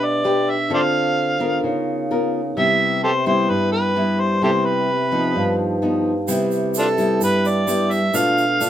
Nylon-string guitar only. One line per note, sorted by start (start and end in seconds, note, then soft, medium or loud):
0.00 0.68 B2 medium
0.00 0.20 D4 medium
0.00 0.20 G4 medium
0.00 0.20 B4 medium
0.24 0.54 D4 medium
0.24 0.54 G4 medium
0.24 0.54 B4 medium
0.70 1.61 D3 medium
0.70 1.36 C4 medium
0.70 1.36 F4 medium
0.70 1.36 A4 medium
1.40 2.06 B3 medium
1.40 2.06 F4 medium
1.40 2.06 A#4 medium
1.64 2.54 C#3 medium
2.11 2.40 B3 medium
2.11 2.40 F4 medium
2.11 2.40 A#4 medium
2.57 3.47 C3 medium
2.57 3.03 G3 soft
2.57 3.03 B3 soft
2.57 3.03 E4 medium
3.26 3.92 G3 medium
3.26 3.92 B3 medium
3.26 3.92 E4 medium
3.50 4.40 G2 medium
3.96 4.39 G3 soft
3.96 4.39 B3 medium
3.96 4.39 E4 medium
4.42 5.33 C3 medium
4.42 4.88 G3 medium
4.42 4.88 B3 medium
4.42 4.89 E4 medium
5.12 5.78 F3 medium
5.12 5.78 B3 medium
5.12 5.78 D#4 medium
5.36 6.26 G2 medium
5.82 6.12 F3 soft
5.82 6.12 B3 medium
5.82 6.12 D#4 medium
6.28 7.19 C3 medium
6.28 6.94 G3 medium
6.28 6.94 B3 medium
6.28 6.94 E4 medium
6.98 7.64 G3 medium
6.98 7.64 B3 medium
6.98 7.64 E4 medium
7.21 8.11 G2 medium
7.67 7.98 G3 medium
7.67 7.99 B3 medium
7.67 7.99 E4 medium
8.14 8.70 B2 medium
8.14 8.44 A3 medium
8.14 8.44 D4 medium
8.14 8.44 F4 medium
8.61 8.70 A3 medium
8.61 8.70 D4 medium
8.61 8.70 F4 medium